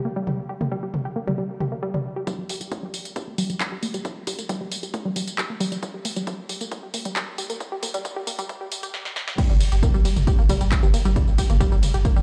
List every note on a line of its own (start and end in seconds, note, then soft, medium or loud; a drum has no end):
0.05 0.09 A#3 medium
0.16 0.20 G3 loud
0.27 0.31 G3 medium
0.27 mid tom medium
0.49 0.54 G4 medium
0.61 0.65 A#3 medium
0.61 mid tom medium
0.72 0.76 G3 loud
0.83 0.87 G3 medium
0.94 mid tom medium
1.05 1.09 G4 medium
1.16 1.20 A#3 medium
1.27 1.31 G3 loud
1.27 mid tom medium
1.38 1.42 G3 medium
1.60 1.65 G4 medium
1.60 mid tom medium
1.72 1.76 A#3 medium
1.83 1.87 G3 loud
1.94 1.98 G3 medium
1.94 mid tom medium
2.16 2.20 G4 medium
2.27 2.31 G3 loud
2.27 kick loud
2.27 closed hi-hat medium
2.27 tambourine soft
2.38 2.43 G3 medium
2.49 open hi-hat loud
2.49 tambourine medium
2.61 2.65 G4 medium
2.61 closed hi-hat medium
2.61 tambourine soft
2.71 2.76 A#3 medium
2.71 kick loud
2.71 closed hi-hat medium
2.71 tambourine soft
2.83 2.87 G3 loud
2.94 2.98 G3 medium
2.94 open hi-hat medium
2.94 tambourine medium
3.05 closed hi-hat medium
3.05 tambourine soft
3.16 3.20 G4 medium
3.16 kick loud
3.16 closed hi-hat medium
3.16 tambourine soft
3.27 3.31 A#3 medium
3.38 3.42 G3 loud
3.38 open hi-hat loud
3.38 tambourine medium
3.50 3.54 G3 medium
3.50 closed hi-hat medium
3.50 tambourine soft
3.60 kick loud
3.60 clap loud
3.60 closed hi-hat medium
3.60 tambourine soft
3.72 3.76 G4 medium
3.83 3.87 A#3 medium
3.83 open hi-hat medium
3.83 tambourine medium
3.94 3.98 G3 loud
3.94 closed hi-hat medium
3.94 tambourine soft
4.05 4.09 G3 medium
4.05 kick loud
4.05 closed hi-hat medium
4.05 tambourine soft
4.27 4.31 G4 medium
4.27 kick medium
4.27 open hi-hat loud
4.27 tambourine medium
4.39 4.43 A#3 medium
4.39 closed hi-hat medium
4.39 tambourine soft
4.49 4.54 G3 loud
4.49 kick loud
4.49 closed hi-hat medium
4.49 tambourine soft
4.61 4.65 G3 medium
4.72 open hi-hat loud
4.72 tambourine medium
4.83 4.87 G4 medium
4.83 closed hi-hat medium
4.83 tambourine soft
4.94 4.98 A#3 medium
4.94 kick loud
4.94 closed hi-hat medium
4.94 tambourine soft
5.05 5.09 G3 loud
5.16 5.20 G3 medium
5.16 open hi-hat loud
5.16 tambourine medium
5.28 closed hi-hat medium
5.28 tambourine soft
5.38 5.42 G4 medium
5.38 kick loud
5.38 clap loud
5.38 closed hi-hat medium
5.38 tambourine soft
5.50 5.54 A#3 medium
5.60 5.65 G3 loud
5.60 open hi-hat medium
5.60 tambourine medium
5.72 5.76 G3 medium
5.72 closed hi-hat medium
5.72 tambourine soft
5.83 kick loud
5.83 closed hi-hat medium
5.83 tambourine soft
5.94 5.98 G4 medium
6.05 6.09 A#3 medium
6.05 open hi-hat loud
6.05 tambourine medium
6.16 6.20 G3 medium
6.16 closed hi-hat medium
6.16 tambourine soft
6.27 6.31 G3 medium
6.27 kick loud
6.27 closed hi-hat medium
6.27 tambourine soft
6.49 6.54 G4 medium
6.49 open hi-hat loud
6.49 tambourine medium
6.61 6.65 A#3 medium
6.61 closed hi-hat medium
6.61 tambourine soft
6.72 kick loud
6.72 closed hi-hat medium
6.72 tambourine soft
6.83 6.87 G4 medium
6.94 6.98 A#3 medium
6.94 open hi-hat loud
6.94 tambourine medium
7.05 7.09 G3 loud
7.05 closed hi-hat medium
7.05 tambourine soft
7.16 7.20 G3 medium
7.16 kick loud
7.16 clap loud
7.16 closed hi-hat medium
7.16 tambourine soft
7.38 7.42 G4 medium
7.38 open hi-hat loud
7.38 tambourine medium
7.50 7.54 A#3 medium
7.50 closed hi-hat medium
7.50 tambourine soft
7.60 kick loud
7.60 closed hi-hat medium
7.60 tambourine soft
7.72 7.76 G4 medium
7.83 7.87 A#3 medium
7.83 kick medium
7.83 open hi-hat loud
7.83 tambourine medium
7.94 7.98 G3 loud
7.94 closed hi-hat medium
7.94 tambourine soft
8.05 kick loud
8.05 closed hi-hat medium
8.05 tambourine soft
8.16 8.20 G4 medium
8.27 8.31 A#3 medium
8.27 open hi-hat loud
8.27 tambourine medium
8.39 8.43 G3 loud
8.39 closed hi-hat medium
8.39 tambourine soft
8.49 kick loud
8.49 closed hi-hat medium
8.49 tambourine soft
8.61 8.65 G4 medium
8.72 open hi-hat loud
8.72 tambourine medium
8.83 8.87 G4 medium
8.83 closed hi-hat medium
8.83 tambourine soft
8.94 snare medium
9.05 snare medium
9.16 snare medium
9.28 snare medium
9.38 9.42 G3 loud
9.38 kick loud
9.38 closed hi-hat medium
9.38 ride medium
9.38 tambourine soft
9.38 crash loud
9.50 9.60 G1 medium
9.50 9.54 G3 medium
9.50 mid tom medium
9.50 tambourine soft
9.61 open hi-hat loud
9.61 ride medium
9.61 tambourine medium
9.72 9.82 G1 medium
9.72 9.76 G4 medium
9.72 closed hi-hat medium
9.72 tambourine soft
9.83 9.87 A#3 medium
9.83 kick loud
9.83 closed hi-hat medium
9.83 mid tom medium
9.83 ride medium
9.83 tambourine soft
9.94 10.05 G1 medium
9.94 9.98 G3 loud
9.94 tambourine soft
10.05 10.09 G3 medium
10.05 open hi-hat loud
10.05 ride medium
10.05 tambourine medium
10.16 10.27 G1 medium
10.16 closed hi-hat medium
10.16 mid tom medium
10.16 tambourine soft
10.27 10.31 G4 medium
10.27 kick loud
10.27 closed hi-hat medium
10.27 ride medium
10.27 tambourine soft
10.39 10.49 G1 medium
10.39 10.43 A#3 medium
10.39 tambourine soft
10.49 10.54 G3 loud
10.49 kick medium
10.49 open hi-hat loud
10.49 mid tom medium
10.49 ride medium
10.49 tambourine medium
10.61 10.71 G1 medium
10.61 10.65 G3 medium
10.61 closed hi-hat medium
10.61 tambourine soft
10.72 kick loud
10.72 clap loud
10.72 closed hi-hat medium
10.72 ride medium
10.72 tambourine soft
10.83 10.94 G1 medium
10.83 10.87 G4 medium
10.83 mid tom medium
10.83 tambourine soft
10.94 10.98 A#3 medium
10.94 open hi-hat medium
10.94 ride medium
10.94 tambourine medium
11.05 11.16 G1 medium
11.05 11.09 G3 loud
11.05 closed hi-hat medium
11.05 tambourine soft
11.16 11.20 G3 medium
11.16 kick loud
11.16 closed hi-hat medium
11.16 mid tom medium
11.16 ride medium
11.16 tambourine soft
11.28 11.38 G1 medium
11.28 tambourine soft
11.38 11.42 G4 medium
11.38 kick medium
11.38 open hi-hat loud
11.38 ride medium
11.38 tambourine medium
11.50 11.60 G1 medium
11.50 11.54 A#3 medium
11.50 closed hi-hat medium
11.50 mid tom medium
11.50 tambourine soft
11.60 11.65 G3 loud
11.60 kick loud
11.60 closed hi-hat medium
11.60 ride medium
11.60 tambourine soft
11.72 11.83 G1 medium
11.72 11.76 G3 medium
11.72 tambourine soft
11.83 open hi-hat loud
11.83 mid tom medium
11.83 ride medium
11.83 tambourine medium
11.94 12.05 G1 medium
11.94 11.98 G4 medium
11.94 closed hi-hat medium
11.94 tambourine soft
12.05 12.09 A#3 medium
12.05 kick loud
12.05 closed hi-hat medium
12.05 ride medium
12.05 tambourine soft
12.16 12.22 G1 medium
12.16 12.20 G3 loud
12.16 mid tom medium
12.16 tambourine soft